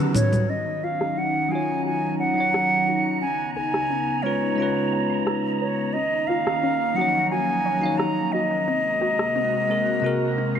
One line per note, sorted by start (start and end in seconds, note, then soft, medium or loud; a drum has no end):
0.00 0.48 D#3 medium
0.00 0.46 F#3 medium
0.00 0.48 B3 medium
0.00 0.14 C#4 loud
0.00 0.47 C#4 medium
0.00 0.48 D#4 medium
0.00 0.47 F#4 medium
0.00 0.49 B4 loud
0.15 0.46 D#4 medium
0.15 0.51 C#5 medium
0.15 mid tom loud
0.15 muted conga medium
0.15 cabasa medium
0.33 mid tom medium
0.33 high conga medium
0.33 cabasa soft
0.49 3.20 D#3 medium
0.49 3.20 F#3 medium
0.49 0.80 C#4 medium
0.49 3.20 C#4 medium
0.49 5.91 D#4 medium
0.49 0.85 D#5 medium
0.49 10.60 A#5 medium
0.49 closed hi-hat medium
0.83 1.02 F4 medium
0.83 1.20 F5 medium
0.83 closed hi-hat soft
1.01 cross-stick medium
1.01 closed hi-hat soft
1.17 1.50 C#4 medium
1.17 1.53 F#5 medium
1.17 closed hi-hat medium
1.49 2.31 F#3 medium
1.49 2.33 D#4 medium
1.49 1.70 F#4 medium
1.49 1.85 G#5 medium
1.49 closed hi-hat soft
1.53 2.34 F4 medium
1.53 2.35 C#5 medium
1.69 closed hi-hat soft
1.85 2.04 F#4 medium
1.85 2.17 G#5 medium
1.85 closed hi-hat medium
2.19 2.38 C#5 medium
2.19 3.18 F#5 loud
2.19 closed hi-hat soft
2.34 3.19 F#3 medium
2.34 3.19 D#4 medium
2.34 closed hi-hat soft
2.38 3.22 C#5 medium
2.38 3.21 F#5 medium
2.54 2.85 C#4 medium
2.54 cross-stick medium
2.54 closed hi-hat soft
2.88 3.19 F#4 medium
3.06 closed hi-hat soft
3.21 5.92 C#3 medium
3.21 5.92 B3 medium
3.21 3.53 C#4 medium
3.21 3.53 G#5 medium
3.21 closed hi-hat soft
3.55 3.75 G#4 medium
3.55 4.24 G#5 medium
3.55 closed hi-hat soft
3.74 cross-stick medium
3.74 closed hi-hat soft
3.90 4.23 C#4 medium
3.90 closed hi-hat soft
4.23 4.54 G#3 medium
4.23 4.54 C#4 medium
4.23 4.55 F4 medium
4.23 4.43 B4 medium
4.23 4.56 B4 medium
4.23 5.33 C#5 medium
4.23 closed hi-hat soft
4.42 closed hi-hat soft
4.55 5.91 G#3 medium
4.55 5.93 C#4 medium
4.55 4.77 B4 medium
4.55 closed hi-hat medium
4.60 5.94 F4 medium
4.60 5.95 B4 medium
4.93 5.12 F5 medium
4.93 closed hi-hat soft
5.10 closed hi-hat soft
5.10 claves medium
5.27 5.57 C#4 medium
5.27 cross-stick medium
5.27 closed hi-hat soft
5.60 5.92 B4 medium
5.60 5.95 C#5 medium
5.78 closed hi-hat soft
5.93 8.65 D#3 medium
5.93 8.65 A#3 medium
5.93 8.65 C#4 medium
5.93 6.26 C#4 medium
5.93 8.65 D#4 medium
5.93 6.29 D#5 medium
5.93 closed hi-hat soft
6.27 6.48 F4 loud
6.27 6.98 F5 medium
6.27 closed hi-hat soft
6.47 cross-stick medium
6.47 closed hi-hat soft
6.63 6.95 C#4 loud
6.63 closed hi-hat soft
6.95 7.77 F#3 medium
6.95 7.78 D#4 medium
6.95 7.16 F#4 medium
6.95 7.30 F#5 medium
6.95 closed hi-hat soft
6.99 7.79 F3 medium
6.99 7.81 C#5 medium
7.15 closed hi-hat soft
7.30 7.50 F#4 medium
7.30 7.99 G#5 medium
7.30 closed hi-hat soft
7.66 7.84 C#5 medium
7.66 closed hi-hat soft
7.79 8.64 F#3 medium
7.79 8.65 D#4 medium
7.79 closed hi-hat soft
7.79 claves medium
7.83 8.67 C#5 medium
7.83 8.66 F5 medium
7.98 8.30 C#4 medium
7.98 8.34 A#5 medium
7.98 cross-stick medium
7.98 closed hi-hat soft
8.32 8.64 F#4 medium
8.32 10.44 D#5 medium
8.51 closed hi-hat soft
8.67 10.60 C3 medium
8.67 10.60 G#3 medium
8.67 10.60 A#3 medium
8.67 8.98 C4 medium
8.67 10.60 F#4 medium
8.67 closed hi-hat soft
9.01 9.20 F#4 loud
9.01 closed hi-hat soft
9.19 cross-stick medium
9.19 closed hi-hat soft
9.36 9.68 C4 loud
9.36 closed hi-hat soft
9.68 9.98 G#3 medium
9.68 9.99 C4 medium
9.68 10.00 F#4 medium
9.68 9.89 G#4 medium
9.68 10.01 A#4 medium
9.68 closed hi-hat soft
9.87 closed hi-hat soft
10.00 10.60 C3 medium
10.00 10.60 G#3 medium
10.00 closed hi-hat medium
10.04 10.60 F#4 medium
10.04 10.23 G#4 medium
10.04 10.60 A#4 loud
10.38 10.60 C4 medium
10.38 closed hi-hat soft
10.55 closed hi-hat soft
10.55 claves medium